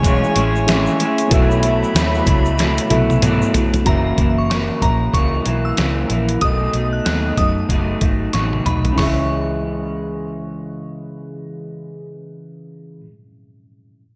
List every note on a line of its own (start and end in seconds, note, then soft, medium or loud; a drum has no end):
0.00 0.23 B1 loud
0.00 0.35 E3 medium
0.00 0.64 A3 medium
0.00 0.62 C#4 medium
0.00 0.63 E4 medium
0.00 0.64 G#4 medium
0.00 3.83 C#5 medium
0.00 0.65 E5 medium
0.00 1.29 G#5 medium
0.00 1.29 C#6 loud
0.00 kick medium
0.04 0.36 G#3 medium
0.04 0.36 C#4 medium
0.04 0.34 E4 medium
0.04 closed hi-hat loud
0.04 shaker medium
0.24 shaker soft
0.35 0.87 A1 medium
0.35 0.68 G#3 soft
0.35 0.68 C#4 medium
0.35 0.67 E4 medium
0.35 closed hi-hat medium
0.56 shaker medium
0.66 1.00 A2 medium
0.66 1.00 E3 medium
0.66 1.00 G#3 medium
0.66 1.31 A3 medium
0.66 1.31 C#4 medium
0.66 0.99 C#4 medium
0.66 1.28 E4 medium
0.66 1.31 G#4 medium
0.66 1.32 E5 medium
0.66 snare loud
0.66 closed hi-hat loud
0.66 shaker medium
0.70 0.97 E4 loud
0.86 shaker medium
0.99 1.31 G#3 medium
0.99 1.32 C#4 medium
0.99 1.31 E4 medium
0.99 closed hi-hat medium
0.99 shaker soft
1.18 closed hi-hat medium
1.18 shaker medium
1.28 1.82 B1 loud
1.28 1.63 B2 medium
1.28 1.64 F#3 medium
1.28 2.86 B3 medium
1.28 2.87 E4 medium
1.28 2.87 F#4 medium
1.28 3.84 E5 medium
1.28 3.84 B5 medium
1.28 kick loud
1.28 closed hi-hat loud
1.32 1.63 A3 medium
1.32 1.62 E4 loud
1.32 2.88 A4 medium
1.32 2.89 E5 medium
1.32 shaker medium
1.51 shaker medium
1.63 1.94 F#3 soft
1.63 1.95 A3 soft
1.63 1.95 E4 medium
1.63 closed hi-hat medium
1.63 shaker soft
1.83 shaker medium
1.94 2.20 D#2 loud
1.94 2.26 B2 medium
1.94 2.27 F#3 loud
1.94 2.26 A3 medium
1.94 2.24 E4 loud
1.94 snare loud
1.94 closed hi-hat loud
1.94 shaker medium
2.15 shaker soft
2.26 2.78 C#2 loud
2.26 2.57 F#3 medium
2.26 2.59 A3 medium
2.26 2.58 E4 soft
2.26 kick loud
2.26 closed hi-hat loud
2.26 shaker medium
2.45 shaker medium
2.57 2.90 B2 medium
2.57 2.91 F#3 medium
2.57 2.90 A3 medium
2.57 2.89 E4 medium
2.57 snare medium
2.57 closed hi-hat medium
2.57 shaker medium
2.77 closed hi-hat medium
2.77 shaker soft
2.89 3.42 B1 medium
2.89 3.23 A3 medium
2.89 3.86 B3 medium
2.89 3.22 E4 medium
2.89 3.86 E4 medium
2.89 3.84 F#4 medium
2.89 3.87 A4 medium
2.89 3.87 E5 medium
2.89 closed hi-hat medium
2.89 high tom medium
2.93 3.22 F#3 medium
3.10 high tom medium
3.10 shaker medium
3.22 3.54 B2 medium
3.22 3.55 F#3 medium
3.22 3.54 A3 medium
3.22 3.52 E4 medium
3.22 closed hi-hat loud
3.22 mid tom loud
3.22 shaker medium
3.42 shaker soft
3.53 3.87 F#3 soft
3.53 3.87 A3 medium
3.53 3.86 E4 medium
3.53 closed hi-hat medium
3.53 floor tom loud
3.53 shaker soft
3.74 closed hi-hat medium
3.74 floor tom loud
3.74 shaker soft
3.84 4.12 F#1 medium
3.84 4.18 F#2 medium
3.84 4.18 C#3 medium
3.84 4.19 E3 medium
3.84 4.18 A#3 medium
3.84 6.36 C#4 medium
3.84 6.37 F#4 medium
3.84 6.38 A#4 medium
3.84 4.17 A#5 loud
3.84 kick loud
3.84 closed hi-hat loud
3.88 4.16 E4 medium
3.88 6.39 E5 medium
4.17 4.69 F#1 medium
4.17 4.50 E3 soft
4.17 4.50 A#3 soft
4.17 4.50 E4 medium
4.17 kick medium
4.17 closed hi-hat medium
4.38 4.49 C#6 medium
4.49 4.82 F#2 medium
4.49 4.82 C#3 medium
4.49 4.83 E3 medium
4.49 4.82 A#3 medium
4.49 4.79 E4 medium
4.49 4.80 C#6 medium
4.49 snare medium
4.49 closed hi-hat medium
4.81 5.07 A#1 medium
4.81 5.13 E3 soft
4.81 5.14 A#3 soft
4.81 5.13 E4 soft
4.81 5.00 A#5 medium
4.81 kick medium
4.81 closed hi-hat medium
5.13 5.39 C#2 medium
5.13 5.45 C#3 medium
5.13 5.46 E3 medium
5.13 5.46 A#3 medium
5.13 5.43 E4 medium
5.13 5.32 C#6 medium
5.13 kick medium
5.13 closed hi-hat medium
5.44 5.72 B1 medium
5.44 5.77 E3 soft
5.44 5.77 A#3 medium
5.44 5.77 E4 medium
5.44 closed hi-hat medium
5.65 5.77 E6 medium
5.77 6.04 C#2 medium
5.77 6.09 F#2 medium
5.77 6.10 C#3 medium
5.77 6.10 E3 medium
5.77 6.09 A#3 medium
5.77 6.07 E4 medium
5.77 snare loud
5.77 closed hi-hat medium
6.09 6.36 A#1 medium
6.09 6.42 E3 soft
6.09 6.42 A#3 soft
6.09 6.41 E4 medium
6.09 closed hi-hat medium
6.29 closed hi-hat medium
6.40 6.68 B1 loud
6.40 6.74 B2 medium
6.40 6.74 F#3 medium
6.40 6.73 A3 medium
6.40 8.93 B3 medium
6.40 6.72 D#4 medium
6.40 8.93 F#4 medium
6.40 8.94 A4 medium
6.40 6.72 D#6 loud
6.40 kick loud
6.40 closed hi-hat medium
6.45 8.95 D#5 medium
6.73 6.99 B1 medium
6.73 7.05 F#3 soft
6.73 7.06 A3 soft
6.73 7.05 D#4 soft
6.73 closed hi-hat medium
6.93 7.04 F#6 medium
7.05 7.31 D#2 medium
7.05 7.37 B2 medium
7.05 7.38 F#3 medium
7.05 7.37 A3 medium
7.05 7.35 D#4 medium
7.05 7.36 F#6 medium
7.05 snare medium
7.05 closed hi-hat medium
7.37 7.63 F#2 medium
7.37 7.69 F#3 soft
7.37 7.70 A3 soft
7.37 7.69 D#4 soft
7.37 7.56 D#6 medium
7.37 kick medium
7.37 closed hi-hat medium
7.69 7.95 F#1 medium
7.69 8.01 B2 medium
7.69 8.02 F#3 medium
7.69 8.02 A3 medium
7.69 8.00 D#4 medium
7.69 kick medium
7.69 closed hi-hat medium
8.01 8.27 G#1 medium
8.01 8.34 F#3 soft
8.01 8.34 A3 soft
8.01 8.33 D#4 soft
8.01 kick medium
8.01 closed hi-hat medium
8.33 8.59 A1 medium
8.33 8.66 B2 medium
8.33 8.66 F#3 medium
8.33 8.66 A3 medium
8.33 8.64 D#4 medium
8.33 8.52 C#6 medium
8.33 snare soft
8.33 closed hi-hat medium
8.53 high tom soft
8.65 8.91 B1 medium
8.65 8.99 F#3 soft
8.65 8.98 A3 soft
8.65 8.97 D#4 soft
8.65 8.84 B5 medium
8.65 closed hi-hat medium
8.65 mid tom medium
8.85 closed hi-hat soft
8.85 floor tom medium
8.92 13.00 C#3 medium
8.92 12.97 C#4 medium
8.96 12.99 C#2 medium
8.96 13.05 E3 medium
8.96 12.99 E4 medium
8.96 13.00 G#4 medium
8.96 10.86 C#6 medium
8.96 kick medium
8.96 snare medium
8.96 open hi-hat medium
9.03 13.08 G#3 medium
9.03 13.02 E5 medium
9.12 13.11 C#4 medium